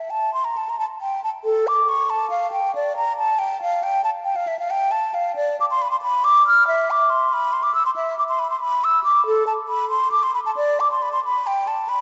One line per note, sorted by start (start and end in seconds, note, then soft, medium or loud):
0.00 0.12 E5 medium
0.10 0.33 A5 medium
0.34 0.46 C6 medium
0.44 0.58 A#5 medium
0.57 0.71 A5 medium
0.69 0.79 A#5 medium
0.79 0.85 A5 medium
1.01 1.22 G5 medium
1.24 1.30 A5 medium
1.45 1.69 A4 medium
1.67 1.90 D6 medium
1.89 2.11 C#6 medium
2.10 2.30 A5 medium
2.30 2.51 F5 medium
2.52 2.74 G5 medium
2.75 2.96 D5 medium
2.97 3.17 A#5 medium
3.17 3.40 A5 medium
3.39 3.61 G5 medium
3.62 3.85 F5 medium
3.83 4.04 G5 medium
4.04 4.10 A5 medium
4.25 4.37 G5 medium
4.36 4.49 F5 medium
4.47 4.58 E5 medium
4.59 4.72 F5 medium
4.71 4.93 G5 medium
4.91 5.16 A5 medium
5.14 5.35 F5 medium
5.36 5.58 D5 medium
5.60 5.65 D6 medium
5.71 5.83 C6 medium
5.82 5.91 B5 medium
5.91 5.96 C6 medium
6.02 6.26 B5 medium
6.24 6.46 D6 loud
6.47 6.67 F6 loud
6.67 6.92 E5 loud
6.91 7.11 D6 medium
7.10 7.35 C6 medium
7.33 7.55 B5 loud
7.53 7.65 C6 medium
7.63 7.74 D6 medium
7.75 7.85 E6 medium
7.86 7.91 C6 medium
7.96 8.17 E5 medium
8.19 8.23 D6 medium
8.29 8.40 C6 medium
8.39 8.50 B5 medium
8.50 8.60 C6 medium
8.61 8.86 B5 medium
8.84 9.03 E6 medium
9.04 9.25 D6 medium
9.27 9.46 A4 loud
9.47 9.53 A5 medium
9.68 9.89 B5 medium
9.90 10.11 C6 medium
10.12 10.25 D6 medium
10.23 10.34 C6 medium
10.35 10.40 B5 medium
10.46 10.51 A5 medium
10.56 10.81 D5 medium
10.80 10.91 D6 medium
10.91 11.04 C6 medium
11.02 11.12 B5 medium
11.12 11.23 C6 medium
11.25 11.48 B5 medium
11.47 11.69 G5 medium
11.67 11.90 A5 medium
11.89 12.01 B5 medium